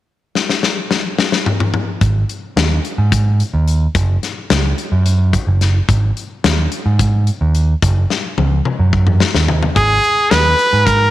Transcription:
0.35 snare medium
0.50 snare medium
0.63 snare medium
0.91 snare medium
1.18 snare medium
1.32 snare medium
1.46 mid tom medium
1.60 mid tom medium
1.74 mid tom medium
2.01 2.23 G#1 medium
2.01 kick medium
2.01 closed hi-hat medium
2.29 closed hi-hat soft
2.56 2.78 D#2 medium
2.56 snare medium
2.56 closed hi-hat medium
2.85 closed hi-hat medium
2.98 3.41 G#2 medium
3.12 kick loud
3.12 closed hi-hat medium
3.40 closed hi-hat medium
3.54 3.86 D#2 medium
3.68 closed hi-hat medium
3.95 4.17 F#1 medium
3.95 kick loud
3.95 closed hi-hat medium
4.23 snare soft
4.23 closed hi-hat medium
4.50 4.72 C#2 medium
4.50 snare medium
4.50 closed hi-hat medium
4.78 closed hi-hat soft
4.92 5.35 F#2 medium
5.06 closed hi-hat medium
5.33 kick medium
5.33 closed hi-hat medium
5.47 5.79 F#1 medium
5.61 snare soft
5.61 closed hi-hat soft
5.89 6.10 G#1 medium
5.89 kick loud
5.89 closed hi-hat medium
6.17 closed hi-hat soft
6.44 6.66 D#2 medium
6.44 snare medium
6.44 closed hi-hat medium
6.72 closed hi-hat medium
6.86 7.29 G#2 medium
6.99 kick medium
6.99 closed hi-hat medium
7.27 closed hi-hat medium
7.41 7.73 D#2 medium
7.55 closed hi-hat medium
7.82 8.04 F#1 loud
7.82 kick medium
7.82 closed hi-hat medium
8.10 snare soft
8.38 8.59 C#2 medium
8.38 high tom medium
8.65 mid tom medium
8.79 9.22 F#2 medium
8.93 kick medium
9.07 mid tom medium
9.20 snare medium
9.35 9.67 D#2 medium
9.35 snare medium
9.48 floor tom medium
9.63 floor tom medium
9.76 9.98 G#1 loud
9.76 10.32 G#4 medium
9.76 kick medium
9.76 closed hi-hat medium
10.04 closed hi-hat soft
10.31 10.53 D#2 medium
10.31 10.87 B4 medium
10.31 snare medium
10.31 closed hi-hat medium
10.59 closed hi-hat medium
10.73 11.11 G#2 medium
10.86 11.11 A#4 medium
10.86 kick medium
10.86 closed hi-hat medium

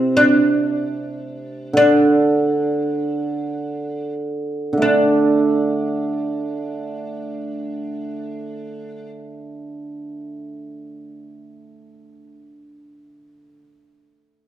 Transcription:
0.00 1.73 C3 soft
0.00 0.20 C4 medium
0.17 1.71 D4 medium
1.73 4.72 D3 soft
1.73 4.14 D4 medium
4.73 13.57 D3 soft
4.77 12.32 A3 soft
4.82 9.11 D4 medium
4.82 11.17 D4 soft

